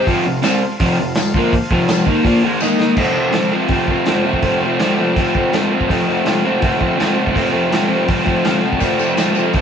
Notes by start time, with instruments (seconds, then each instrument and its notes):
0.06 overdriven electric guitar F2 C3 F3, transistor combo organ F4 A4 C5, kick, open hi-hat
0.25 overdriven electric guitar F2 C3
0.41 overdriven electric guitar C3 G3 C4, transistor combo organ F4 A4 C5, snare, open hi-hat, tambourine
0.62 muted overdriven electric guitar stroke
0.78 overdriven electric guitar F2 C3 F3, transistor combo organ F4 A4 C5, kick, open hi-hat
0.99 overdriven electric guitar F2 C3
1.15 overdriven electric guitar F2 C3, transistor combo organ F4 A4 C5, snare, open hi-hat, tambourine
1.34 overdriven electric guitar A#2 F3 A#3, kick
1.51 transistor combo organ F4 A4 C5, muted overdriven electric guitar stroke, kick, open hi-hat
1.71 overdriven electric guitar F2 C3 F3, kick
1.86 transistor combo organ F4 A4 C5, snare, open hi-hat, tambourine
2.06 overdriven electric guitar D#3 A#3 D#4, kick
2.23 overdriven electric guitar A#2 F3 A#3, transistor combo organ F4 A4 C5, kick, open hi-hat
2.43 overdriven electric guitar G#2 D#3 G#3
2.61 overdriven electric guitar D#3 A#3 D#4, transistor combo organ D#4 A#4 D#5, snare, tambourine
2.80 snare
2.95 overdriven electric guitar F2 C3 F3 A3 C4, transistor combo organ F4 A4 C5, kick, crash
3.14 overdriven electric guitar F3 A3 C4
3.31 overdriven electric guitar C3 F3 A3, transistor combo organ F4 A4 C5, snare, open hi-hat
3.35 overdriven electric guitar C4
3.51 overdriven electric guitar F2 C3 F3 A3 C4
3.68 overdriven electric guitar C3 F3 A3 C4, kick, open hi-hat
3.72 transistor combo organ F4 A4 C5
3.88 overdriven electric guitar F3 A3 C4, kick
4.06 overdriven electric guitar F2 C3 F3 A3 C4, transistor combo organ F4 A4 C5, snare, open hi-hat
4.24 overdriven electric guitar F3 A3 C4
4.34 kick
4.42 overdriven electric guitar F2 C3 F3 A3 C4, transistor combo organ F4 A4 C5, kick, open hi-hat
4.62 overdriven electric guitar F3 A3 C4
4.79 overdriven electric guitar C3 F3 A3 C4, transistor combo organ F4 A4 D5, snare, open hi-hat
4.97 overdriven electric guitar F2 C3 F3 A3 C4
5.16 overdriven electric guitar C3 F3 A3 C4, transistor combo organ F4 A4 C5, kick, open hi-hat
5.35 overdriven electric guitar F3 A3 C4, kick
5.52 overdriven electric guitar F2 C3 F3 A3 C4, transistor combo organ F4 A4 C5, snare, open hi-hat
5.71 overdriven electric guitar F3 A3 C4
5.81 kick
5.86 overdriven electric guitar F2 C3 F3, transistor combo organ F4 A4 D#5
5.90 overdriven electric guitar A3 C4, kick, open hi-hat
6.07 overdriven electric guitar F3 A3 C4
6.24 overdriven electric guitar C3 F3 A3 C4, transistor combo organ F4 A4 C5, snare, open hi-hat
6.44 overdriven electric guitar F2 C3 F3 A3 C4
6.60 overdriven electric guitar C3 F3 A3 C4, transistor combo organ F4 A4 C5, kick, open hi-hat
6.79 overdriven electric guitar F3 A3 C4, kick
6.96 overdriven electric guitar F2 C3 F3 A3 C4
7.00 transistor combo organ F4 A4 C5, snare, open hi-hat
7.13 overdriven electric guitar F3 A3 C4
7.27 transistor combo organ F4 A4, kick
7.32 overdriven electric guitar F2 C3 F3 A3 C4, transistor combo organ C5
7.36 kick, open hi-hat
7.50 overdriven electric guitar F3 A3 C4
7.70 overdriven electric guitar C3 F3 A3 C4, transistor combo organ F4 A4 C5, snare, open hi-hat
7.88 overdriven electric guitar F2 C3 F3 A3 C4
8.05 overdriven electric guitar C3 F3 A3 C4, transistor combo organ F4 A4 C5, kick, open hi-hat
8.24 overdriven electric guitar F3 A3 C4, kick
8.41 overdriven electric guitar F2 C3, transistor combo organ F4 A4 C5 F5, open hi-hat
8.45 overdriven electric guitar F3 A3 C4, snare
8.62 overdriven electric guitar F3 A3 C4, transistor combo organ A5
8.73 kick
8.78 overdriven electric guitar F2 C3 F3 A3 C4, transistor combo organ F4 A4 D5, kick, open hi-hat, tambourine
8.98 overdriven electric guitar F3 A3 C4, tambourine
9.16 overdriven electric guitar C3 F3 A3 C4, transistor combo organ F4 A4 C5, snare, open hi-hat, tambourine
9.35 overdriven electric guitar F2 C3 F3 A3 C4, tambourine
9.53 overdriven electric guitar C3 F3 A3 C4, transistor combo organ F4 A4 D#5, kick, open hi-hat, tambourine